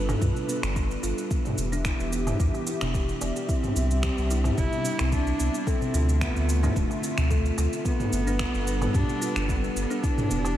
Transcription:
Already playing: sub bass G1, analog synth pad G3 D4 A4 B4
0.09 kalimba D4, mid tom, darbuka tek, cabasa
0.21 sub bass G2, kalimba F4, kick, darbuka dum, cabasa
0.36 cabasa
0.49 kalimba B3, cabasa
0.63 sub bass G1, finger snap, cabasa
0.76 kalimba D4, kick, cabasa
0.91 cabasa
1.03 sub bass G1, kalimba F4, cabasa
1.18 cabasa
1.30 analog synth pad E3 B3 G4 E5, kalimba B3, kick, cabasa
1.45 mid tom, darbuka dum, cabasa
1.58 sub bass E1, cabasa
1.72 kalimba D4, cabasa
1.85 kalimba E4, finger snap, kick, cabasa
2.00 sub bass E1, cabasa
2.12 kalimba B3, cabasa
2.27 mid tom, darbuka ka, darbuka tek, cabasa
2.39 sub bass E2, kalimba D4, kick, cabasa
2.54 darbuka ka, cabasa
2.67 kalimba E4, cabasa
2.81 sub bass E1, kalimba D4, finger snap, darbuka dum, cabasa
2.94 kalimba G4, kick, cabasa
3.09 cabasa
3.21 sub bass E1, kalimba D5, darbuka tek, cabasa
3.36 kalimba G4, cabasa
3.48 analog synth pad C3 G3 D4, cello C4, kalimba E4, kick, cabasa
3.63 mid tom, cabasa
3.76 sub bass C2, kalimba B3, cabasa
3.91 cabasa
4.03 kalimba G4, finger snap, kick, cabasa
4.18 sub bass C2, cabasa
4.30 kalimba E4, cabasa
4.44 mid tom, darbuka tek, cabasa
4.57 sub bass G1, kalimba B3, cello E4, kick, darbuka dum, cabasa
4.73 cabasa
4.85 cabasa
4.99 sub bass C2, kalimba C4, finger snap, cabasa
5.12 cello D4, kalimba E4, kick, cabasa
5.27 cabasa
5.39 sub bass C2, kalimba B3, cabasa
5.55 cabasa
5.67 analog synth pad D3 A3 F4, cello C4, kalimba A4, kick, cabasa
5.81 darbuka dum, cabasa
5.94 sub bass D2, kalimba F4, cabasa
6.09 cabasa
6.21 cello B3, kalimba C4, finger snap, kick, cabasa
6.36 sub bass D2, cabasa
6.49 cabasa
6.63 kalimba D4, mid tom, darbuka ka, darbuka tek, cabasa
6.76 sub bass D1, cello A3, kalimba F4, kick, cabasa
6.91 darbuka ka, cabasa
7.03 kalimba C4, cabasa
7.17 sub bass D2, finger snap, darbuka dum, cabasa
7.31 kalimba A4, kick, cabasa
7.45 cabasa
7.58 sub bass D2, kalimba F4, darbuka tek, cabasa
7.73 cabasa
7.85 analog synth pad G3 D4 A4 B4, kalimba B3, cello B3, kick, cabasa
8.00 mid tom, cabasa
8.12 sub bass G1, cabasa
8.27 kalimba D4, cabasa
8.39 finger snap, kick, cabasa
8.54 sub bass G1, cabasa
8.67 kalimba B3, cabasa
8.81 mid tom, darbuka tek, cabasa
8.93 sub bass G2, cello D4, kalimba G4, kick, darbuka dum, cabasa
9.09 cabasa
9.21 kalimba F4, cabasa
9.36 sub bass G1, finger snap, cabasa
9.48 kalimba B3, cello B3, kick, cabasa
9.56 cello C4
9.64 cello B3, cabasa
9.76 sub bass G1, cabasa
9.90 kalimba D4, cabasa
10.03 analog synth pad E3 B3 E4 G4, cello D4, kalimba E4, kick, cabasa
10.18 mid tom, darbuka dum, cabasa
10.30 sub bass E1, kalimba B3, cabasa
10.45 darbuka tek, cabasa

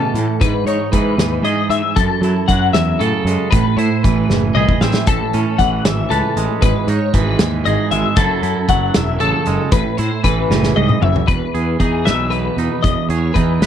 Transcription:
Already playing: clean electric guitar A2 B2 E3 C#4 A4
0.14 picked electric bass A2, closed hi-hat
0.18 clean electric guitar A2
0.41 picked electric bass G#2, clean electric guitar G#2 B4, kick, closed hi-hat
0.65 picked electric bass G#2, clean electric guitar D#4 C#5, closed hi-hat
0.92 picked electric bass G#2, clean electric guitar E3 B4, kick, closed hi-hat
1.17 picked electric bass D#2, snare, closed hi-hat
1.42 picked electric bass G#2, clean electric guitar G#2 G#4 D#5, closed hi-hat
1.70 picked electric bass G#2, clean electric guitar E5, closed hi-hat
1.96 picked electric bass F#2, clean electric guitar F#2 A4, kick, closed hi-hat
2.21 picked electric bass F#3, clean electric guitar E4, closed hi-hat
2.48 picked electric bass F#2, clean electric guitar F#3 F#5, kick, closed hi-hat
2.73 picked electric bass E2, clean electric guitar E5, snare, closed hi-hat
2.99 picked electric bass A2, clean electric guitar C#3 A4, closed hi-hat
3.25 picked electric bass F#2, clean electric guitar G#3, closed hi-hat
3.51 picked electric bass A1, clean electric guitar A2 B4, kick, closed hi-hat
3.77 picked electric bass A2, clean electric guitar E4 C5, closed hi-hat
4.03 picked electric bass A1, clean electric guitar E3 B4, kick, closed hi-hat
4.29 picked electric bass F#1, snare
4.55 picked electric bass C2, clean electric guitar E3 G#4 D#5, mid tom
4.69 kick
4.81 picked electric bass A1, clean electric guitar C4 E5, snare
4.94 snare
5.07 picked electric bass A1, clean electric guitar A2 A4, kick, closed hi-hat
5.33 picked electric bass A2, clean electric guitar C#4, closed hi-hat
5.58 picked electric bass A1, clean electric guitar E3 F#5, kick, closed hi-hat
5.85 picked electric bass G#1, clean electric guitar E5, snare, closed hi-hat
6.10 picked electric bass C#2, clean electric guitar E3 A4 B4, closed hi-hat
6.37 picked electric bass A1, clean electric guitar G#3, closed hi-hat
6.61 picked electric bass G#1, clean electric guitar G#2 B4, kick, closed hi-hat
6.87 picked electric bass G#2, clean electric guitar D#4 C#5, closed hi-hat
7.14 picked electric bass G#1, clean electric guitar E3 B4, kick, closed hi-hat
7.39 picked electric bass D#2, snare, closed hi-hat
7.66 picked electric bass G#1, clean electric guitar G#2 G#4 D#5, closed hi-hat
7.91 picked electric bass G#1, clean electric guitar G#3 E5, closed hi-hat
8.16 picked electric bass F#1, clean electric guitar F#2 F#3 E4 A4, kick, closed hi-hat
8.43 picked electric bass F#2, clean electric guitar E4, closed hi-hat
8.69 picked electric bass F#1, clean electric guitar F#3 F#5, kick, closed hi-hat
8.94 picked electric bass E1, clean electric guitar E5, snare, closed hi-hat
9.19 picked electric bass A1, clean electric guitar C#3 A4, closed hi-hat
9.46 picked electric bass F#1, clean electric guitar G#3, closed hi-hat
9.72 picked electric bass A1, clean electric guitar A2 B4, kick, closed hi-hat
9.97 picked electric bass A2, clean electric guitar E4 C5, closed hi-hat
10.24 picked electric bass A1, clean electric guitar E3 B4, kick, closed hi-hat
10.50 picked electric bass F#1, clean electric guitar A2, snare
10.63 snare
10.76 picked electric bass C2, clean electric guitar G#2 D#5, high tom
10.89 mid tom
11.01 picked electric bass F#1, clean electric guitar F#2 E5, mid tom
11.16 floor tom
11.28 picked electric bass E1, clean electric guitar E2 B4, kick, closed hi-hat
11.54 picked electric bass E2, clean electric guitar G#4, closed hi-hat
11.80 picked electric bass E2, clean electric guitar E3 D#4 G#4, kick, closed hi-hat
12.05 picked electric bass B1, clean electric guitar B4 E5, snare, closed hi-hat
12.30 clean electric guitar B2 B4, closed hi-hat
12.57 picked electric bass E2, clean electric guitar D#4, closed hi-hat
12.83 picked electric bass E1, clean electric guitar E2 D#5, kick, closed hi-hat
13.09 picked electric bass E2, clean electric guitar G#4 C#5, closed hi-hat
13.34 picked electric bass E2, clean electric guitar E3 D#4 B4, kick, closed hi-hat
13.60 picked electric bass B1, clean electric guitar B4, snare, closed hi-hat

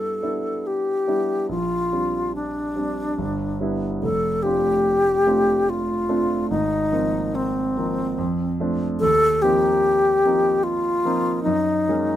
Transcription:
Already playing: grand piano G2 G3 B3 D4 E4, alto flute A4
0.22 grand piano G3 B3 D4 E4
0.67 alto flute G4
1.07 grand piano G3 B3 D4 E4
1.49 grand piano A#1, alto flute F4
1.93 grand piano G3 C4 D4
2.35 alto flute D4
2.76 grand piano G3 C4 D4
3.18 grand piano G1
3.60 grand piano G3 B3 D4 E4
4.03 grand piano F1, alto flute A4
4.43 grand piano A3 C4 D4 F4, alto flute G4
5.27 grand piano A3 C4 D4 F4
5.69 alto flute F4
6.09 grand piano A3 C4 D4 F4
6.50 grand piano G#1, alto flute D#4
6.92 grand piano F3 A#3 C4 D#4
7.35 alto flute C4
7.77 grand piano F3 A#3 C4 D#4
8.18 grand piano F2
8.60 grand piano F3 A3 C4 D4
9.00 grand piano D#2, alto flute A4
9.42 grand piano F3 A#3 C4 D#4, alto flute G4
10.25 grand piano F3 A#3 C4 D#4
10.63 alto flute F4
11.05 grand piano F3 A#3 C4 D#4
11.43 grand piano F#2, alto flute D#4
11.88 grand piano F#3 G#3 A#3 C#4

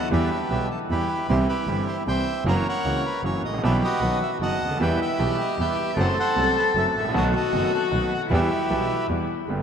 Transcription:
Already playing: cello B3
0.11 double bass E2, grand piano E2 E3 G3 B3 G4, bandoneon G4 B4 E5
0.31 bandoneon E5
0.50 double bass B1, grand piano B1 B2 E3 G3 B3 G4, bandoneon E5
0.71 bandoneon A4
0.90 double bass E2, grand piano E2 E3 G3 B3 G4, bandoneon E4 G4 B4
1.29 double bass C2, grand piano C2 C3 E3 G3 C4 G4, bandoneon E4 G4 C5
1.48 bandoneon E4 G4 B4
1.67 double bass G1, grand piano G1 G2 E3 G3 C4 G4
1.88 bandoneon C5
2.06 double bass C2, grand piano C2 C3 E3 G3 C4 G4, bandoneon C5 E5 G5
2.45 double bass F#1, grand piano F#2 E3 F#3 A#3 C#4 F#4, bandoneon A#4 C#5 F#5
2.69 bandoneon A#4 C#5 F#5
2.84 double bass C#2, grand piano C#2 C#3 E3 A#3 C#4 F#4
3.06 bandoneon B4
3.23 double bass F#1, grand piano F#2 E3 F#3 A#3 C#4 F#4, bandoneon C#5
3.43 double bass A1, bandoneon D#5
3.48 grand piano G#1
3.54 grand piano A1
3.58 grand piano A#1, double bass B1
3.63 grand piano B1 B2 E3 G3 B3 G4, bandoneon G4 B4 E5
3.84 bandoneon F#4 B4 D#5
4.01 double bass B1, grand piano B1 B2 D#3 F#3 B3 F#4
4.22 bandoneon E5
4.40 double bass F#1, grand piano F#1 F#2 D#3 F#3 B3 F#4, bandoneon D#5 F#5 A5
4.60 double bass D2
4.65 grand piano C#2
4.70 grand piano D2
4.75 grand piano D#2, double bass E2
4.80 grand piano E2 E3 G3 B3 G4, cello E4, bandoneon B4 E5 G5
5.02 bandoneon B4 E5 G5
5.19 double bass B1, grand piano B1 B2 E3 G3 B3 G4, cello G4
5.41 bandoneon D#5
5.59 double bass E2, grand piano E2 E3 G3 B3 G4, bandoneon B4 E5 G5
5.97 double bass F#1, grand piano F#2 F#3 A3 C4 A4, cello A4, bandoneon A4 C5 F#5
6.20 bandoneon A4 C5 F#5
6.36 grand piano C2 C3 F#3 A3 C4 A4, double bass C2
6.59 bandoneon B4
6.75 double bass F#1, grand piano F#2 F#3 A3 C4 A4, bandoneon E5
6.95 double bass A1, bandoneon E5
7.00 grand piano G#1
7.04 grand piano A1
7.09 grand piano A#1
7.14 double bass B1, grand piano B1 B2 D#3 A3 B3 F#4, cello F#4, bandoneon F#4 A4 D#5
7.36 bandoneon F#4 A4 D#5
7.53 grand piano F#1 F#2 D#3 A3 B3 F#4, double bass F#1
7.75 bandoneon A4
7.91 grand piano B1 B2 D#3 A3 B3 F#4, double bass B1, bandoneon B4
8.14 bandoneon F#5
8.30 double bass E2, grand piano E2 E3 G3 B3 G4, cello E4, bandoneon G4 B4
8.34 bandoneon E5
8.70 double bass B1, grand piano B1 B2 E3 G3 B3 G4
9.08 double bass E2, grand piano E2 E3 G3 B3 G4
9.48 double bass G1, grand piano G1 G2 D3 G3 B3 G4

